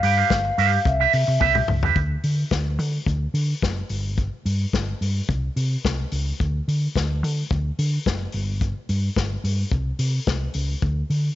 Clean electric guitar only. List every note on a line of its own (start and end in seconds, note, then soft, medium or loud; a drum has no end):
0.03 0.17 G4 medium
0.03 0.17 B4 medium
0.03 0.17 G5 medium
0.17 0.33 G4 medium
0.17 0.33 B4 medium
0.17 0.32 F5 medium
0.45 muted clean electric guitar stroke medium
0.58 0.78 G4 medium
0.58 0.72 B4 medium
0.58 0.71 F5 medium
0.72 muted clean electric guitar stroke soft
0.86 muted clean electric guitar stroke soft
1.00 1.12 G4 medium
1.00 1.12 B4 medium
1.00 1.12 E5 loud
1.13 muted clean electric guitar stroke soft
1.27 muted clean electric guitar stroke medium
1.40 1.61 G4 medium
1.40 1.54 B4 medium
1.40 1.54 E5 medium
1.55 muted clean electric guitar stroke soft
1.68 muted clean electric guitar stroke soft
1.83 1.99 G4 medium
1.83 1.98 B4 medium
1.83 1.98 E5 medium